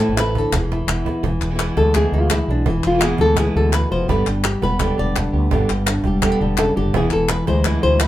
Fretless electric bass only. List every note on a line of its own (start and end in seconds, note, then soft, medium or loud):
0.00 0.10 A2 medium
0.09 0.43 A1 medium
0.52 0.80 E1 medium
0.87 1.02 E1 medium
1.23 1.37 E1 medium
1.41 1.69 E1 medium
1.77 2.05 D2 medium
2.12 2.40 D2 medium
2.48 2.62 B1 medium
2.66 2.80 E1 medium
2.84 3.12 E1 medium
3.19 3.47 D2 medium
3.56 3.83 D2 medium
3.91 4.05 F1 medium
4.08 4.23 G1 medium
4.27 4.55 G1 medium
4.63 4.91 E1 medium
4.99 5.27 E1 medium
5.33 5.48 D2 loud
5.52 5.66 G1 medium
5.70 5.98 G1 medium
6.05 6.33 E1 medium
6.41 6.69 E1 medium
6.77 6.91 F#1 medium
6.95 7.09 E1 medium
7.14 7.41 E1 medium
7.48 7.76 D2 loud
7.84 8.08 D2 medium